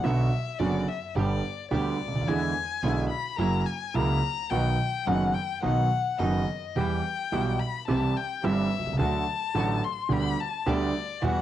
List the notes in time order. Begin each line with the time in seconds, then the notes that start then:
0.04 B1 B2 D3 F#3 B3 D4 F#4 E5
0.59 F#1 F#2 D3 F#3 B3 D4 F#4 D5
0.88 E5
1.15 G1 G2 D3 G3 B3 D4 G4 D5
1.71 D2 D3 G3 B3 D4 G4 D5
2.06 C#2
2.13 D2
2.20 D#2
2.27 E2 D3 E3 G#3 B3 D4 E4 G#5
2.83 B1 B2 D3 G#3 B3 D4 E4
3.10 B5
3.37 F#1 F#2 C#3 F#3 A#3 E4 A#5
3.66 G#5
3.94 C#2 C#3 F#3 A#3 E4 A#5
4.50 B1 B2 D#3 F#3 B3 D#4 F#4 G5
5.06 F#1 F#2 D#3 F#3 B3 D#4 F#4 F#5
5.34 G5
5.62 B1 B2 D#3 F#3 B3 D#4 F#4 F#5
6.19 F#1 F#2 D#3 F#3 B3 D#4 F#4 D#5
6.75 E2 E3 G3 B3 E4 G4 G5
7.32 B1 B2 E3 G3 B3 E4 G4
7.60 B5
7.87 C2 C3 E3 G3 C4 E4 G4 A5
8.17 G5
8.43 G1 G2 E3 G3 C4 E4 G4 E5
8.79 B1
8.86 C2
8.92 C#2
8.99 D2 D3 F#3 A3 D4 F#4 A5
9.55 A1 A2 D3 F#3 A3 D4 F#4
9.85 C6
10.09 D2 D3 G3 B3 D4 G4 B5
10.41 A5
10.66 D2 D3 G3 B3 D4 G4 D5
11.22 E2 E3 G3 B3 E4 F#4 F#5